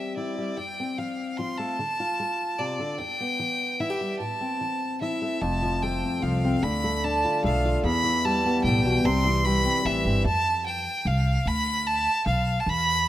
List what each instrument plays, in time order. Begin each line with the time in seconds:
Already playing: steel-string acoustic guitar E3 G3 C4, fiddle E5
0.17 steel-string acoustic guitar E3 E4, fiddle D5
0.38 steel-string acoustic guitar G3
0.57 steel-string acoustic guitar F2, fiddle G5
0.80 steel-string acoustic guitar C4
0.98 steel-string acoustic guitar F3, fiddle F5
1.37 steel-string acoustic guitar F3 F4, fiddle C6
1.58 steel-string acoustic guitar A3, fiddle A5
1.79 steel-string acoustic guitar D3
2.00 steel-string acoustic guitar F4
2.20 steel-string acoustic guitar A3
2.58 steel-string acoustic guitar C3, fiddle D5
2.79 steel-string acoustic guitar D3
2.99 steel-string acoustic guitar E2, fiddle G5
3.20 steel-string acoustic guitar B3
3.39 steel-string acoustic guitar E3
3.80 steel-string acoustic guitar E3 E4, fiddle E5
3.90 steel-string acoustic guitar G4
4.01 steel-string acoustic guitar G3
4.19 steel-string acoustic guitar A2, fiddle A5
4.41 steel-string acoustic guitar C4
4.61 steel-string acoustic guitar E3
5.01 steel-string acoustic guitar E3 E4, fiddle E5
5.22 steel-string acoustic guitar A3
5.42 upright bass F1, steel-string acoustic guitar F2, fiddle A5
5.63 steel-string acoustic guitar F3
5.82 steel-string acoustic guitar A3, fiddle G5
6.04 steel-string acoustic guitar C4
6.22 upright bass C2, steel-string acoustic guitar F3, fiddle F5
6.45 steel-string acoustic guitar C4
6.63 upright bass D2, steel-string acoustic guitar D3, fiddle B5
6.84 steel-string acoustic guitar A3
7.04 steel-string acoustic guitar D4, fiddle A5
7.25 steel-string acoustic guitar F4
7.44 upright bass B1, steel-string acoustic guitar A3, fiddle F5
7.65 steel-string acoustic guitar F4
7.84 upright bass E2, steel-string acoustic guitar E2, fiddle B5
8.04 steel-string acoustic guitar E3
8.25 steel-string acoustic guitar G3, fiddle A5
8.45 steel-string acoustic guitar B3
8.64 upright bass B1, steel-string acoustic guitar A2, fiddle G5
8.85 steel-string acoustic guitar B2
9.05 upright bass C2, steel-string acoustic guitar C3, fiddle C6
9.25 steel-string acoustic guitar E3
9.45 steel-string acoustic guitar G3, fiddle B5
9.65 steel-string acoustic guitar C4
9.85 upright bass A1, steel-string acoustic guitar E3, fiddle E5
10.05 upright bass G1, steel-string acoustic guitar C4
10.25 upright bass F2, fiddle A5
10.66 fiddle G5
11.05 upright bass C2, fiddle F5
11.46 upright bass D2, fiddle B5
11.87 fiddle A5
12.26 upright bass B1, fiddle F5
12.60 fiddle A5
12.66 upright bass E2, fiddle B5